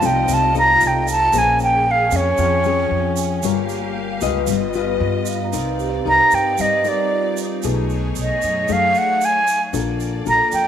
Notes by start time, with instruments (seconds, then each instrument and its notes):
Already playing: nylon-string guitar F3, string section A3 F4 D#5, vibraphone F5 G5 B5
0.02 upright bass C2, nylon-string guitar C4 D#4 A4, flute G5, shaker
0.28 upright bass C2, nylon-string guitar C3, shaker
0.34 flute A5
0.55 nylon-string guitar C4 D#4 A4, flute A#5, shaker
0.81 upright bass C2, shaker
0.87 flute G5
1.08 flute A5, shaker
1.33 upright bass A#1, nylon-string guitar A#3 C#4 G#4 C5, string section C#4 G#4, shaker
1.38 flute G#5
1.59 shaker
1.63 flute G5
1.91 flute F5
2.11 upright bass F2, nylon-string guitar C#4 G#4, shaker
2.16 flute C#5
2.37 upright bass F2, nylon-string guitar F3, vibraphone G5, shaker
2.64 nylon-string guitar C#4 G#4, shaker
2.91 upright bass F2
3.16 vibraphone G#5, shaker
3.43 upright bass G1, nylon-string guitar G3 F4 A#4 C#5, string section A#3 G4 F5, shaker
3.69 shaker
4.21 upright bass C#2, nylon-string guitar F4 B4 D#5, shaker
4.47 upright bass G1, nylon-string guitar G3, string section B3 F4 D#5, shaker
4.73 nylon-string guitar F4 B4 D#5, shaker
5.00 upright bass G2
5.26 vibraphone F5, shaker
5.44 vibraphone A#5
5.52 upright bass C2, nylon-string guitar C4 D#4 A#4 D5, string section C4 D#4, shaker
5.56 string section D5
5.63 vibraphone B4
5.79 vibraphone G4, shaker
6.05 upright bass C2, nylon-string guitar D#4 A#4 D5, flute A#5
6.31 upright bass G2, flute G5, shaker
6.58 upright bass G2, nylon-string guitar G3, flute D#5, shaker
6.84 nylon-string guitar D#4 A#4 D5, shaker
6.88 flute D5
7.11 vibraphone F4
7.37 shaker
7.63 upright bass B1, nylon-string guitar B2 A3 D#4 G#4, string section A3 G#4 C#5, shaker
7.90 shaker
8.15 upright bass B1, shaker
8.21 flute D#5
8.42 upright bass F#2, shaker
8.68 upright bass F#2, nylon-string guitar F#3 A3 D#4 G#4, shaker
8.72 flute F5
8.95 flute F#5, shaker
9.21 flute G#5, shaker
9.47 shaker
9.73 upright bass A#1, nylon-string guitar A#3 D4 F4 A4, string section A#3 A4 D5, shaker
10.00 shaker
10.25 upright bass A#1, nylon-string guitar D4 F4 A4, flute A#5, shaker
10.52 upright bass F2, flute G5, shaker